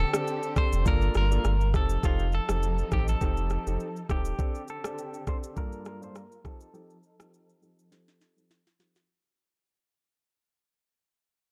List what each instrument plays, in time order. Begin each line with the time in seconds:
Already playing: string section D3 C4 G4
0.00 clean electric guitar A4
0.13 grand piano C4 D4 G4 A4, cross-stick, shaker
0.27 shaker
0.43 shaker
0.56 grand piano C4 D4 G4 A4, clean electric guitar C5, kick, cross-stick, shaker
0.72 sub bass F1, shaker
0.85 sub bass G1, string section G3 A#3 F4, grand piano A#3 D4 F4 A4, clean electric guitar A#4, kick, shaker
1.02 shaker
1.14 sub bass G1, clean electric guitar A#4, cross-stick, shaker
1.31 grand piano A#3 D4 F4 A4, shaker
1.44 sub bass G1, cross-stick, shaker
1.61 shaker
1.74 sub bass F1, string section F3 D#4 A4, grand piano C4 D#4 G4 A4, clean electric guitar A4, kick, cross-stick, shaker
1.89 shaker
2.03 sub bass F1, grand piano C4 D#4 G4 A4, clean electric guitar F4, kick, shaker
2.19 shaker
2.32 clean electric guitar A4, shaker
2.49 sub bass F1, grand piano C4 D#4 G4 A4, cross-stick, shaker
2.63 shaker
2.78 shaker
2.91 sub bass A1, grand piano C4 D#4 G4 A4, clean electric guitar G4, kick, cross-stick, shaker
3.08 clean electric guitar A4, shaker
3.21 sub bass F1, grand piano C4 D#4 G4 A4, kick, shaker
3.37 shaker
3.50 cross-stick, shaker
3.67 sub bass F1, grand piano C4 D#4 G4 A4, shaker
3.80 shaker
3.96 shaker
4.09 sub bass D#1, grand piano C4 D#4 G4 A4, clean electric guitar G4, kick, cross-stick, shaker
4.25 shaker
4.38 string section D3 C4 G4, grand piano C4 D4 G4 A4, kick, shaker
4.55 shaker
4.68 clean electric guitar A4, shaker
4.84 grand piano C4 D4 G4 A4, cross-stick, shaker
4.98 shaker
5.14 shaker
5.27 grand piano C4 D4 G4 A4, clean electric guitar C5, kick, cross-stick, shaker
5.43 shaker
5.56 grand piano G2 A#3 D4 F4 A4, string section G3 A#3 F4, clean electric guitar A#4, kick, shaker
5.72 shaker
5.85 clean electric guitar A#4, cross-stick, shaker
6.01 grand piano G2 A#3 D4 F4 A4, clean electric guitar C5, shaker
6.15 clean electric guitar A#4, cross-stick, shaker
6.32 shaker
6.44 grand piano F3 C4 D#4 G4 A4, string section F3 D#4 A4, clean electric guitar A4, kick, cross-stick, shaker
6.60 clean electric guitar A4, shaker
6.73 grand piano F3 C4 D#4 G4 A4, shaker
6.90 shaker
7.03 shaker
7.19 grand piano F3 C4 D#4 G4 A4, cross-stick, shaker
7.34 shaker
7.49 shaker
7.62 grand piano F3 C4 D#4 G4 A4, shaker
7.79 shaker
7.91 grand piano F3 C4 D#4 G4 A4, snare, shaker
8.08 snare, shaker
8.21 snare, shaker
8.37 grand piano F3 C4 D#4 G4 A4, shaker
8.51 snare, shaker
8.67 snare, shaker
8.79 grand piano F3 C4 D#4 G4 A4, snare, shaker
8.95 snare, shaker